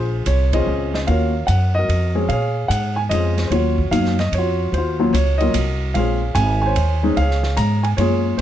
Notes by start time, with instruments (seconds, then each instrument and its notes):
Already playing: upright bass A#1, grand piano F4 G#4 C5
0.26 upright bass C2, grand piano C#5, hi-hat pedal, ride
0.53 grand piano C4 C#4 F4 G#4 C5 D#5, kick, ride
0.66 upright bass C#2
0.94 grand piano D#5, snare
1.07 upright bass D#2, grand piano A#3 C#4 F4 F#4 A#4 C#5 F5, ride
1.47 upright bass F#2, grand piano F#5, hi-hat pedal, ride
1.75 grand piano F#4 A#4 D#5
1.89 upright bass F2, ride
2.15 grand piano G#3 C4 C#4 G#4
2.28 upright bass A#2, grand piano F5, ride
2.33 grand piano G#4 C#5
2.68 upright bass G#2, grand piano F#5, hi-hat pedal, ride
2.96 grand piano G#5
3.09 upright bass F2, grand piano G#3 C4 C#4 F4 D#5, hi-hat pedal, ride
3.14 grand piano G#4 C5
3.38 snare, ride
3.47 upright bass D#2, grand piano F#3 C5 C#5
3.51 grand piano A#3 C#4 F4 F#4, ride
3.78 kick
3.91 upright bass F#2, grand piano F#3 A#3 C#4 D#4 F5, hi-hat pedal, ride
4.05 snare
4.19 grand piano D#5, snare, ride
4.32 upright bass F2, grand piano C#5, ride
4.38 grand piano F4 F#4
4.72 upright bass D#2, grand piano C5, ride
4.78 grand piano F4 F#4
5.00 grand piano F#3 A#3 C#4 F4
5.13 upright bass C#2, grand piano C#5, hi-hat pedal, ride
5.38 grand piano F#3 A#3 C#4 F4 D#5, ride
5.42 grand piano F#4 A#4
5.54 upright bass C2, hi-hat pedal, ride
5.94 upright bass A#1, grand piano G#3 C4 C#4 F4 F5, ride
5.99 grand piano G#4 C#5
6.35 upright bass G#1, grand piano G#5, hi-hat pedal, ride
6.62 grand piano G#5
6.66 grand piano C5 C#5
6.76 upright bass D#2, ride
7.03 grand piano G#3 C4 C#4 D#4
7.16 upright bass C#2, grand piano F5, ride
7.21 grand piano G#4 C#5
7.31 snare
7.43 snare
7.57 upright bass G#2, grand piano A#5, hi-hat pedal, ride
7.83 grand piano G#5, ride
7.97 upright bass F#2, grand piano G#3 A#3 C#4 F4 C#5, ride
8.01 grand piano G#4
8.38 grand piano C5